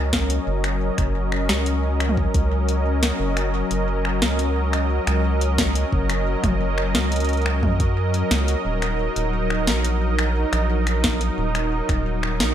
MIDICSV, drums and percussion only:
0, 0, Header, 1, 2, 480
1, 0, Start_track
1, 0, Key_signature, 6, "major"
1, 0, Tempo, 681818
1, 331, Time_signature, 4, 2, 24, 8
1, 8831, End_track
2, 0, Start_track
2, 0, Title_t, "Drums"
2, 91, Note_on_c, 9, 36, 86
2, 91, Note_on_c, 9, 38, 117
2, 161, Note_off_c, 9, 36, 0
2, 161, Note_off_c, 9, 38, 0
2, 210, Note_on_c, 9, 42, 68
2, 281, Note_off_c, 9, 42, 0
2, 450, Note_on_c, 9, 26, 62
2, 450, Note_on_c, 9, 42, 56
2, 521, Note_off_c, 9, 26, 0
2, 521, Note_off_c, 9, 42, 0
2, 690, Note_on_c, 9, 26, 36
2, 690, Note_on_c, 9, 42, 69
2, 691, Note_on_c, 9, 36, 88
2, 761, Note_off_c, 9, 26, 0
2, 761, Note_off_c, 9, 36, 0
2, 761, Note_off_c, 9, 42, 0
2, 931, Note_on_c, 9, 26, 54
2, 1001, Note_off_c, 9, 26, 0
2, 1050, Note_on_c, 9, 38, 120
2, 1121, Note_off_c, 9, 38, 0
2, 1170, Note_on_c, 9, 42, 69
2, 1241, Note_off_c, 9, 42, 0
2, 1411, Note_on_c, 9, 26, 79
2, 1411, Note_on_c, 9, 42, 37
2, 1471, Note_on_c, 9, 45, 79
2, 1481, Note_off_c, 9, 26, 0
2, 1481, Note_off_c, 9, 42, 0
2, 1531, Note_on_c, 9, 36, 111
2, 1541, Note_off_c, 9, 45, 0
2, 1601, Note_off_c, 9, 36, 0
2, 1650, Note_on_c, 9, 42, 68
2, 1651, Note_on_c, 9, 36, 122
2, 1721, Note_off_c, 9, 36, 0
2, 1721, Note_off_c, 9, 42, 0
2, 1891, Note_on_c, 9, 42, 57
2, 1961, Note_off_c, 9, 42, 0
2, 2131, Note_on_c, 9, 38, 120
2, 2131, Note_on_c, 9, 42, 68
2, 2201, Note_off_c, 9, 38, 0
2, 2201, Note_off_c, 9, 42, 0
2, 2371, Note_on_c, 9, 26, 58
2, 2371, Note_on_c, 9, 42, 54
2, 2441, Note_off_c, 9, 26, 0
2, 2441, Note_off_c, 9, 42, 0
2, 2611, Note_on_c, 9, 42, 66
2, 2681, Note_off_c, 9, 42, 0
2, 2851, Note_on_c, 9, 26, 51
2, 2921, Note_off_c, 9, 26, 0
2, 2971, Note_on_c, 9, 38, 120
2, 3041, Note_off_c, 9, 38, 0
2, 3091, Note_on_c, 9, 42, 66
2, 3161, Note_off_c, 9, 42, 0
2, 3331, Note_on_c, 9, 26, 74
2, 3331, Note_on_c, 9, 42, 36
2, 3402, Note_off_c, 9, 26, 0
2, 3402, Note_off_c, 9, 42, 0
2, 3571, Note_on_c, 9, 26, 75
2, 3571, Note_on_c, 9, 42, 69
2, 3641, Note_off_c, 9, 26, 0
2, 3641, Note_off_c, 9, 42, 0
2, 3811, Note_on_c, 9, 42, 54
2, 3881, Note_off_c, 9, 42, 0
2, 3931, Note_on_c, 9, 36, 89
2, 3931, Note_on_c, 9, 38, 123
2, 4001, Note_off_c, 9, 36, 0
2, 4001, Note_off_c, 9, 38, 0
2, 4051, Note_on_c, 9, 42, 67
2, 4121, Note_off_c, 9, 42, 0
2, 4171, Note_on_c, 9, 36, 85
2, 4241, Note_off_c, 9, 36, 0
2, 4291, Note_on_c, 9, 26, 58
2, 4291, Note_on_c, 9, 42, 52
2, 4362, Note_off_c, 9, 26, 0
2, 4362, Note_off_c, 9, 42, 0
2, 4531, Note_on_c, 9, 26, 35
2, 4531, Note_on_c, 9, 36, 87
2, 4531, Note_on_c, 9, 42, 66
2, 4531, Note_on_c, 9, 45, 80
2, 4601, Note_off_c, 9, 36, 0
2, 4602, Note_off_c, 9, 26, 0
2, 4602, Note_off_c, 9, 42, 0
2, 4602, Note_off_c, 9, 45, 0
2, 4771, Note_on_c, 9, 26, 50
2, 4842, Note_off_c, 9, 26, 0
2, 4891, Note_on_c, 9, 38, 124
2, 4962, Note_off_c, 9, 38, 0
2, 5011, Note_on_c, 9, 42, 62
2, 5041, Note_off_c, 9, 42, 0
2, 5041, Note_on_c, 9, 42, 52
2, 5071, Note_off_c, 9, 42, 0
2, 5071, Note_on_c, 9, 42, 41
2, 5101, Note_off_c, 9, 42, 0
2, 5101, Note_on_c, 9, 42, 34
2, 5131, Note_off_c, 9, 42, 0
2, 5131, Note_on_c, 9, 42, 27
2, 5161, Note_off_c, 9, 42, 0
2, 5161, Note_on_c, 9, 42, 23
2, 5191, Note_off_c, 9, 42, 0
2, 5191, Note_on_c, 9, 42, 18
2, 5221, Note_off_c, 9, 42, 0
2, 5221, Note_on_c, 9, 42, 15
2, 5251, Note_on_c, 9, 26, 74
2, 5291, Note_off_c, 9, 42, 0
2, 5321, Note_off_c, 9, 26, 0
2, 5371, Note_on_c, 9, 36, 107
2, 5371, Note_on_c, 9, 45, 82
2, 5441, Note_off_c, 9, 36, 0
2, 5441, Note_off_c, 9, 45, 0
2, 5491, Note_on_c, 9, 36, 123
2, 5491, Note_on_c, 9, 42, 66
2, 5561, Note_off_c, 9, 36, 0
2, 5561, Note_off_c, 9, 42, 0
2, 5731, Note_on_c, 9, 42, 53
2, 5801, Note_off_c, 9, 42, 0
2, 5851, Note_on_c, 9, 38, 124
2, 5921, Note_off_c, 9, 38, 0
2, 5971, Note_on_c, 9, 42, 62
2, 6041, Note_off_c, 9, 42, 0
2, 6211, Note_on_c, 9, 26, 59
2, 6211, Note_on_c, 9, 42, 51
2, 6281, Note_off_c, 9, 26, 0
2, 6281, Note_off_c, 9, 42, 0
2, 6451, Note_on_c, 9, 42, 63
2, 6521, Note_off_c, 9, 42, 0
2, 6691, Note_on_c, 9, 26, 51
2, 6761, Note_off_c, 9, 26, 0
2, 6811, Note_on_c, 9, 38, 118
2, 6881, Note_off_c, 9, 38, 0
2, 6931, Note_on_c, 9, 42, 61
2, 7001, Note_off_c, 9, 42, 0
2, 7171, Note_on_c, 9, 26, 75
2, 7171, Note_on_c, 9, 42, 36
2, 7241, Note_off_c, 9, 26, 0
2, 7241, Note_off_c, 9, 42, 0
2, 7411, Note_on_c, 9, 26, 77
2, 7411, Note_on_c, 9, 42, 65
2, 7481, Note_off_c, 9, 26, 0
2, 7481, Note_off_c, 9, 42, 0
2, 7651, Note_on_c, 9, 26, 51
2, 7651, Note_on_c, 9, 42, 52
2, 7721, Note_off_c, 9, 26, 0
2, 7721, Note_off_c, 9, 42, 0
2, 7771, Note_on_c, 9, 36, 86
2, 7771, Note_on_c, 9, 38, 121
2, 7841, Note_off_c, 9, 36, 0
2, 7841, Note_off_c, 9, 38, 0
2, 7891, Note_on_c, 9, 42, 62
2, 7961, Note_off_c, 9, 42, 0
2, 8131, Note_on_c, 9, 26, 62
2, 8131, Note_on_c, 9, 42, 50
2, 8201, Note_off_c, 9, 26, 0
2, 8201, Note_off_c, 9, 42, 0
2, 8371, Note_on_c, 9, 26, 37
2, 8371, Note_on_c, 9, 36, 81
2, 8371, Note_on_c, 9, 42, 62
2, 8441, Note_off_c, 9, 26, 0
2, 8441, Note_off_c, 9, 42, 0
2, 8442, Note_off_c, 9, 36, 0
2, 8611, Note_on_c, 9, 26, 53
2, 8681, Note_off_c, 9, 26, 0
2, 8731, Note_on_c, 9, 38, 111
2, 8801, Note_off_c, 9, 38, 0
2, 8831, End_track
0, 0, End_of_file